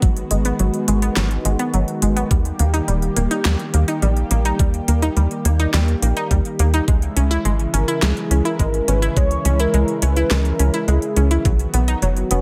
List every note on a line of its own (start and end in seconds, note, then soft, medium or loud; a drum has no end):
0.00 0.24 G#1 medium
0.00 6.84 D#3 medium
0.00 0.09 F#3 medium
0.00 2.27 G#3 medium
0.00 2.27 B3 medium
0.00 2.27 F#4 medium
0.00 kick loud
0.00 closed hi-hat medium
0.17 closed hi-hat soft
0.31 0.52 G#1 loud
0.31 0.44 G#3 medium
0.31 closed hi-hat loud
0.45 0.56 B3 loud
0.45 closed hi-hat medium
0.59 0.70 G#1 medium
0.59 0.66 F#3 medium
0.59 closed hi-hat medium
0.74 closed hi-hat soft
0.88 1.09 G#1 medium
0.88 1.02 G#3 medium
0.88 closed hi-hat medium
1.02 1.13 B3 loud
1.02 closed hi-hat medium
1.16 1.38 G#1 medium
1.16 1.23 F#3 medium
1.16 snare loud
1.16 closed hi-hat medium
1.31 closed hi-hat soft
1.45 1.56 G#1 loud
1.45 1.59 G#3 medium
1.45 closed hi-hat loud
1.59 1.70 B3 loud
1.59 closed hi-hat medium
1.74 1.84 G#1 loud
1.74 1.80 F#3 medium
1.74 closed hi-hat medium
1.88 closed hi-hat soft
2.02 2.24 G#1 medium
2.02 2.16 G#3 medium
2.02 closed hi-hat medium
2.16 2.27 B3 medium
2.16 closed hi-hat medium
2.31 2.52 D#2 loud
2.31 2.37 G3 medium
2.31 6.84 G3 medium
2.31 6.84 A#3 medium
2.31 6.84 G4 medium
2.31 kick loud
2.31 closed hi-hat medium
2.45 closed hi-hat soft
2.59 2.81 D#2 medium
2.59 2.73 A#3 medium
2.59 closed hi-hat medium
2.74 2.84 D#4 loud
2.74 closed hi-hat medium
2.88 3.09 D#1 medium
2.88 2.94 G3 medium
2.88 closed hi-hat medium
3.02 closed hi-hat soft
3.16 3.27 D#1 medium
3.16 3.30 A#3 medium
3.16 closed hi-hat medium
3.31 3.42 D#4 loud
3.31 closed hi-hat medium
3.45 3.56 D#2 medium
3.45 3.52 G3 medium
3.45 snare loud
3.45 closed hi-hat medium
3.59 closed hi-hat soft
3.74 3.85 D#2 medium
3.74 3.87 A#3 medium
3.74 closed hi-hat loud
3.88 3.99 D#4 loud
3.88 closed hi-hat medium
4.02 4.24 A#1 loud
4.02 4.09 G3 medium
4.02 closed hi-hat medium
4.17 closed hi-hat soft
4.31 4.52 A#1 loud
4.31 4.45 A#3 medium
4.31 closed hi-hat medium
4.45 4.56 D#4 medium
4.45 closed hi-hat medium
4.59 4.81 D#2 medium
4.59 4.66 G3 medium
4.59 kick loud
4.59 closed hi-hat medium
4.74 closed hi-hat soft
4.88 5.09 D#2 loud
4.88 5.02 A#3 medium
4.88 closed hi-hat medium
5.02 5.13 D#4 loud
5.02 closed hi-hat soft
5.17 5.27 D#2 medium
5.17 5.23 G3 medium
5.17 closed hi-hat medium
5.31 closed hi-hat soft
5.45 5.67 D#2 medium
5.45 5.59 A#3 medium
5.45 closed hi-hat medium
5.60 5.70 D#4 loud
5.60 closed hi-hat soft
5.74 5.95 D#2 medium
5.74 5.80 G3 medium
5.74 snare loud
5.74 closed hi-hat medium
5.88 closed hi-hat soft
6.02 6.13 A#1 medium
6.02 6.16 A#3 medium
6.02 closed hi-hat medium
6.17 6.27 D#4 loud
6.17 closed hi-hat soft
6.31 6.42 D#2 loud
6.31 6.37 G3 medium
6.31 kick medium
6.31 closed hi-hat medium
6.45 closed hi-hat soft
6.59 6.81 D#2 medium
6.59 6.73 A#3 medium
6.59 closed hi-hat medium
6.74 6.84 D#4 loud
6.74 closed hi-hat medium
6.88 7.09 C#2 loud
6.88 11.41 C#3 medium
6.88 11.41 E3 medium
6.88 6.94 G#3 medium
6.88 11.41 G#3 medium
6.88 11.41 E4 medium
6.88 kick loud
6.88 closed hi-hat soft
7.02 closed hi-hat soft
7.16 7.38 C#2 medium
7.16 7.30 C#4 medium
7.16 closed hi-hat medium
7.31 7.41 E4 loud
7.31 closed hi-hat soft
7.45 7.67 G#1 medium
7.45 7.52 G#3 medium
7.45 closed hi-hat medium
7.59 closed hi-hat soft
7.74 7.84 G#1 medium
7.74 7.87 C#4 medium
7.74 8.04 A#4 medium
7.74 closed hi-hat medium
7.88 7.99 E4 loud
7.88 closed hi-hat soft
8.02 8.13 C#2 medium
8.02 8.09 G#3 medium
8.02 8.47 G#4 loud
8.02 snare loud
8.02 closed hi-hat soft
8.17 closed hi-hat soft
8.31 8.41 C#2 medium
8.31 8.45 C#4 medium
8.31 closed hi-hat medium
8.45 8.56 E4 loud
8.45 8.90 A#4 loud
8.45 closed hi-hat soft
8.59 8.81 G#1 loud
8.59 8.66 G#3 medium
8.59 kick medium
8.59 closed hi-hat medium
8.74 closed hi-hat soft
8.88 9.09 G#1 loud
8.88 9.02 C#4 medium
8.88 9.16 B4 loud
8.88 closed hi-hat medium
9.02 9.13 E4 loud
9.02 closed hi-hat soft
9.16 9.38 C#2 medium
9.16 9.23 G#3 medium
9.16 9.62 C#5 loud
9.16 kick loud
9.16 closed hi-hat medium
9.31 closed hi-hat soft
9.45 9.67 C#2 loud
9.45 9.59 C#4 medium
9.45 closed hi-hat medium
9.60 9.70 E4 loud
9.60 10.04 A#4 loud
9.60 closed hi-hat medium
9.74 9.84 C#2 medium
9.74 9.80 G#3 medium
9.74 closed hi-hat medium
9.88 closed hi-hat soft
10.02 10.24 C#2 medium
10.02 10.16 C#4 medium
10.02 10.33 B4 loud
10.02 closed hi-hat medium
10.16 10.27 E4 loud
10.16 closed hi-hat soft
10.31 10.52 C#2 loud
10.31 10.37 G#3 medium
10.31 10.90 A#4 loud
10.31 snare loud
10.31 closed hi-hat medium
10.45 closed hi-hat soft
10.59 10.70 C#2 medium
10.59 10.73 C#4 medium
10.59 closed hi-hat medium
10.74 10.84 E4 loud
10.74 closed hi-hat medium
10.88 10.99 C#2 loud
10.88 10.94 G#3 medium
10.88 11.31 G#4 medium
10.88 closed hi-hat soft
11.02 closed hi-hat soft
11.16 11.38 C#2 medium
11.16 11.30 C#4 medium
11.16 closed hi-hat medium
11.31 11.42 E4 loud
11.31 closed hi-hat soft
11.45 11.67 B1 loud
11.45 12.41 D#3 medium
11.45 12.41 F#3 medium
11.45 11.52 F#3 medium
11.45 12.41 B3 medium
11.45 12.41 F#4 medium
11.45 kick loud
11.45 closed hi-hat medium
11.59 closed hi-hat soft
11.74 11.95 B1 medium
11.74 11.87 B3 medium
11.74 closed hi-hat medium
11.88 11.99 D#4 loud
11.88 closed hi-hat medium
12.02 12.24 F#1 medium
12.02 12.09 F#3 medium
12.02 closed hi-hat medium
12.17 closed hi-hat soft
12.31 12.41 F#1 medium
12.31 12.41 B3 medium
12.31 12.41 C#4 loud
12.31 closed hi-hat medium